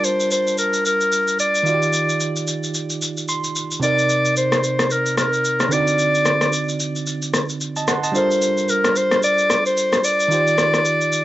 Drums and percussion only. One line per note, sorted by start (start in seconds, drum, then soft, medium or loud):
0.04 shaker medium
0.20 shaker medium
0.31 shaker medium
0.47 shaker soft
0.58 shaker medium
0.73 shaker soft
0.85 shaker medium
1.01 shaker soft
1.12 shaker medium
1.28 shaker medium
1.39 shaker medium
1.55 shaker medium
1.66 shaker medium
1.82 shaker soft
1.93 shaker medium
2.09 shaker medium
2.20 shaker medium
2.36 shaker medium
2.47 shaker medium
2.63 shaker soft
2.74 shaker medium
2.90 shaker medium
3.02 shaker medium
3.17 shaker soft
3.28 shaker medium
3.44 shaker medium
3.56 shaker medium
3.71 shaker medium
3.82 shaker medium
3.99 shaker soft
4.09 shaker medium
4.25 shaker medium
4.36 shaker medium
4.52 cross-stick medium
4.52 shaker medium
4.64 shaker medium
4.79 cross-stick medium
4.79 shaker soft
4.90 shaker medium
5.06 shaker medium
5.17 cross-stick medium
5.17 shaker medium
5.33 shaker soft
5.45 shaker medium
5.60 cross-stick medium
5.60 shaker medium
5.72 shaker medium
5.87 shaker medium
5.99 shaker medium
6.15 shaker soft
6.25 cross-stick medium
6.25 shaker medium
6.41 cross-stick medium
6.41 shaker soft
6.53 shaker medium
6.69 shaker medium
6.80 shaker medium
6.96 shaker soft
7.07 shaker medium
7.22 shaker medium
7.34 cross-stick medium
7.34 shaker medium
7.49 shaker soft
7.61 shaker medium
7.76 shaker medium
7.88 cross-stick medium
7.88 shaker medium
8.04 shaker medium
8.15 shaker medium
8.31 shaker soft
8.42 shaker medium
8.58 shaker medium
8.69 shaker medium
8.85 cross-stick medium
8.85 shaker medium
8.96 shaker medium
9.11 cross-stick medium
9.11 shaker soft
9.23 shaker medium
9.38 shaker medium
9.50 cross-stick medium
9.50 shaker medium
9.66 shaker soft
9.77 shaker medium
9.93 cross-stick medium
9.93 shaker medium
10.04 shaker medium
10.20 shaker medium
10.31 shaker medium
10.47 shaker soft
10.58 cross-stick loud
10.58 shaker medium
10.74 cross-stick medium
10.74 shaker medium
10.85 shaker medium
11.01 shaker medium
11.12 shaker medium